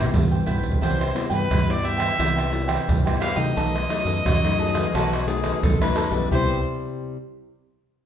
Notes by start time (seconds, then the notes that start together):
Already playing: C3 G3 B3 E4 G4
0.02 surdo
0.13 G2, surdo, pandeiro, shaker
0.25 surdo
0.31 B4 C5 G5, pandeiro, shaker
0.46 G3 B3 E4 B4 C5 G5, pandeiro, surdo
0.60 C2, pandeiro, shaker, surdo
0.72 surdo
0.81 C2 C3 G3 B3 E4 B4 C5 G5, pandeiro, shaker, surdo
1.00 B4 C5 G5, pandeiro, tamborim, shaker
1.14 G3 B3 E4, muted cavaquinho stroke, pandeiro, tamborim, shaker
1.30 G2 B4 G5, pandeiro, shaker, surdo
1.50 G2, pandeiro, tamborim, shaker, surdo
1.68 G3 B3 E4 D5, pandeiro, tamborim, shaker
1.82 E4 B4 C5 E5 G5, pandeiro
1.98 B4 C5 G5, pandeiro, tamborim, shaker, surdo
2.18 C2 C3 G3 B3 E4 B4 C5 G5, pandeiro, tamborim, shaker, surdo
2.36 B4 C5 G5, pandeiro, tamborim, shaker
2.51 G3 B3 E4, muted cavaquinho stroke, pandeiro, shaker
2.68 B4 C5 G5, pandeiro, tamborim, shaker, surdo
2.88 C2 G2, pandeiro, shaker, surdo
3.05 G3 B3 E4 B4 C5 G5, pandeiro, tamborim, shaker, surdo
3.20 E4 B4 C5 F5 G5, pandeiro, tamborim
3.35 C3 F#3 A3 D#4 B4 C5 D#5 G5, pandeiro, shaker
3.56 B1 B2 D#4 A4 B4 D#5, pandeiro, shaker, surdo
3.74 A4 B4 D#5, pandeiro, tamborim, shaker
3.89 F#3 A3 D#4, muted cavaquinho stroke, pandeiro, tamborim, shaker, surdo
4.05 F#2 A4 B4 D#5, pandeiro, shaker, surdo
4.25 F#2 F#4, pandeiro, tamborim, shaker, surdo
4.44 F#3 A3 D#4, pandeiro, tamborim, shaker
4.58 D#4 G#4 A4 B4 D#5, pandeiro, shaker
4.74 A4 B4 D#5, pandeiro, tamborim, shaker, surdo
4.94 B1 B2 F#3 A3 D#4 F#4 A4 B4 D#5, pandeiro, tamborim, shaker, surdo
5.12 A4 B4 D#5, pandeiro, tamborim, shaker
5.27 F#3 A3 D#4 G#4, muted cavaquinho stroke, pandeiro
5.43 A4 B4 D#5, pandeiro, tamborim, shaker, surdo
5.62 B1 F#2 A4, pandeiro, shaker, surdo
5.81 F#3 A3 D#4 A4 B4 D#5, pandeiro, tamborim, shaker, surdo
5.95 D#4 A4 B4 D#5, pandeiro, tamborim
6.11 B1 G3 B3 E4 A4 B4 D#5, pandeiro, shaker
6.31 C2 C3 G3 E4 G4 B4 C5 G5, surdo